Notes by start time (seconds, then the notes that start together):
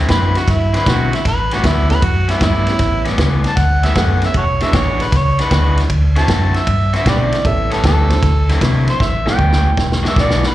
0.08 F#2 D3 F#3 C4 E4 B4, kick, snare, ride
0.35 F#4, snare, ride
0.48 G2 E4, kick, snare, ride
0.74 D3 F#3 C4 E4 B4, snare, ride
0.86 B2 D3 F#3 C4 E4 F#4, kick, snare, ride
1.13 E4, snare, ride
1.25 A1 B4, kick, snare, ride
1.51 A2 G3 B3 C#4 F#4, snare, ride
1.64 D2 A2 G3 B3 C#4 E4, kick, snare, ride
1.90 B3 C#4 E4 G4 A4 B4, snare, ride
2.02 F#2 F#4, kick, ride
2.28 A2 G3 B3 C#4 E4, snare, ride
2.41 G2 A2 G3 B3 C#4 E4, kick, snare, ride
2.67 B3 C#4 E4 G4 B4, snare, ride
2.79 A1, kick, snare, ride
3.05 A2 G3 B3 C#4, snare, ride
3.18 C#2 A2 G3 B3 C#4, kick, snare, ride
3.44 A5, snare, ride
3.57 D2 F#5, kick, snare, ride
3.83 A2 G3 B3 C#4 E5, snare, ride
3.95 F#2 A2 G3 B3 C#4 E4 G4 A4 F#5, kick, snare, ride
4.22 E5, snare, ride
4.34 E1 F#4 A4 C#5, kick, ride
4.61 E3 G#3 B3 D4 E4 F#4 G#4 E5, snare, ride
4.73 A1 E3 G#3 D4 F#4 C#5, kick, snare, ride
5.00 B4, snare, ride
5.12 C#2, kick, snare, ride
5.17 C#5
5.39 E3 G#3 D4 F#4 B4, snare, ride
5.51 D2 E3 G#3 D4 F#4, kick, snare, ride
5.78 snare, ride
5.90 D2, kick, ride
6.16 D3 C4 D4 E4 F#4 A4 A5, snare, ride
6.28 F#2 D3 C4 E4 F#4, kick, snare, ride
6.54 E5, snare, ride
6.67 G2, kick, ride
6.93 D3 C4 E4 F#4 E5, snare, ride
7.06 B2 D3 C4 E4 F#4 G4 B4 D5, kick, snare, ride
7.32 snare, ride
7.45 A1 B3 C#4 E4 G4 A4 E5, kick, ride
7.71 A2 G3 B3 C#4 A4, snare, ride
7.83 D2 A2 G3 B3 C#4, kick, snare, ride
7.87 A4
8.10 C4 D4 E4 F#4 C5, snare, ride
8.23 D2, kick, snare, ride
8.49 D3 F#3 C4 E4, snare, ride
8.61 C3 D3 F#3 C4 E4, kick, snare, ride
8.88 C5, snare, ride
9.00 A1 E5, kick, snare
9.25 A2 G3 B3 C#4 E4 G4 A4, snare
9.30 G5
9.39 D2 A2 G3 B3 C#4, kick
9.52 snare
9.77 E1, kick, snare
9.92 snare
10.03 E3 G#3 D4 F#4, snare
10.08 E5
10.16 B1 E3 G#3 D4 F#4 D5, kick, snare
10.30 snare
10.43 snare
10.47 B4